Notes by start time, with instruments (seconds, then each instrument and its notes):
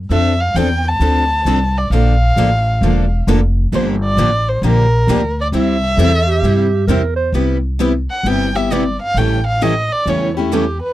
0.10 upright bass F2, steel-string acoustic guitar F3 C4 D4 A4, violin E5
0.41 violin F5
0.54 upright bass E2, steel-string acoustic guitar F3 C4 D4 A4, violin G5
0.88 violin A5
1.00 upright bass D2, steel-string acoustic guitar F3 C4 D4 A4
1.45 upright bass C2, steel-string acoustic guitar F3 C4 D4 A4
1.78 violin D5
1.90 upright bass A#1, steel-string acoustic guitar D3 F3 A#3 D4 A4, violin F5
2.36 upright bass A1, steel-string acoustic guitar D3 F3 A#3 D4 A4
2.81 upright bass E1, steel-string acoustic guitar D3 F3 A#3 D4 A4
3.27 upright bass F1, steel-string acoustic guitar D3 F3 A#3 D4 A4
3.72 upright bass G1, steel-string acoustic guitar D3 F3 A#3 D4 G4, violin C5
4.04 violin D5
4.17 upright bass A1, steel-string acoustic guitar D3 F3 A#3 D4 G4
4.49 violin C5
4.62 upright bass A#1, steel-string acoustic guitar D3 F3 A#3 D4 G4
4.66 violin A#4
5.07 upright bass D2, steel-string acoustic guitar D3 F3 A#3 D4 G4
5.41 violin D5
5.52 upright bass C2, steel-string acoustic guitar C3 G3 C4 E4 G4
5.57 violin E5
5.97 upright bass E2, steel-string acoustic guitar C3 G3 C4 E4 G4, clarinet A4
6.27 clarinet G4
6.42 upright bass G2, steel-string acoustic guitar C3 G3 C4 E4 G4
6.87 upright bass E2, steel-string acoustic guitar C3 G3 C4 E4 G4, clarinet A#4
7.16 clarinet C5
7.32 upright bass C2, steel-string acoustic guitar C3 G3 B3 E4 G4
7.79 steel-string acoustic guitar C3 G3 B3 E4 G4
8.10 violin F#5
8.23 upright bass G1, steel-string acoustic guitar C3 G3 B3 E4 G4, violin G5
8.55 steel-string acoustic guitar B3 E4 G4, violin E5
8.72 steel-string acoustic guitar C3 G3 B3 E4 G4, violin D5
9.02 violin F5
9.14 upright bass A1, steel-string acoustic guitar C#3 E3 G3 A3 C#4 E4 A4, violin G5
9.18 steel-string acoustic guitar G4
9.47 violin F5
9.61 steel-string acoustic guitar C#3 E3 G3 A3 C#4 E4 G4 A4, violin D#5
9.92 violin D5
10.06 upright bass E2, steel-string acoustic guitar C#3 E3 G3 A3 C#4 E4 G4 A4, violin C#5
10.37 steel-string acoustic guitar A3 C#4 G4, violin E4
10.52 steel-string acoustic guitar C#3 E3 G3 A3 C#4 E4 G4 A4, violin G4
10.82 violin B4